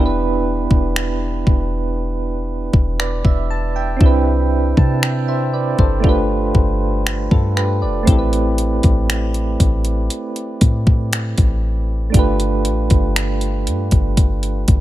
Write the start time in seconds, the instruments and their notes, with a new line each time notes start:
Already playing: 808-style bass E1, synth keys B3 D4 E4 G4
0.06 synth keys B4
0.71 808-style bass E1, kick
0.96 finger snap
1.47 808-style bass E1, kick
2.73 808-style bass E1, kick
3.00 synth keys B4 D5, finger snap
3.25 808-style bass E1, synth keys E5, kick
3.51 synth keys A5
3.76 synth keys E5 G5
3.97 synth keys C4 D4, kick
4.01 808-style bass C2, synth keys E4 G4
4.06 synth keys B4
4.77 808-style bass C3, synth keys A5, kick
5.03 synth keys E5 G5, finger snap
5.28 synth keys C5 E5
5.54 synth keys B4 D5
5.79 808-style bass G1, synth keys A4 C5, kick
6.00 synth keys A3 D4, kick
6.04 synth keys F4 G4
6.09 synth keys B4
6.55 808-style bass G1, kick
7.07 finger snap
7.31 808-style bass G2, synth keys F4 A4, kick
7.57 synth keys G4 B4, finger snap
7.82 808-style bass F1, synth keys B4 D5
8.03 synth keys A3 C4
8.07 808-style bass A1, synth keys E4 G4, kick, closed hi-hat
8.12 synth keys A4
8.19 synth keys B4
8.33 closed hi-hat
8.58 closed hi-hat
8.83 808-style bass A1, kick, closed hi-hat
9.10 finger snap, closed hi-hat
9.34 closed hi-hat
9.60 808-style bass A1, kick, closed hi-hat
9.85 closed hi-hat
10.10 closed hi-hat
10.36 closed hi-hat
10.61 808-style bass A2, kick, closed hi-hat
10.87 kick
11.13 finger snap, closed hi-hat
11.38 808-style bass A1, kick, closed hi-hat
12.10 synth keys A3 D4
12.14 808-style bass G1, synth keys F4 G4, kick, closed hi-hat
12.19 synth keys B4
12.40 closed hi-hat
12.65 808-style bass A1, closed hi-hat
12.90 808-style bass G1, kick, closed hi-hat
13.16 finger snap, closed hi-hat
13.41 closed hi-hat
13.67 808-style bass G2, closed hi-hat
13.91 808-style bass G1, kick, closed hi-hat
14.17 kick, closed hi-hat
14.43 closed hi-hat
14.68 808-style bass G1, kick, closed hi-hat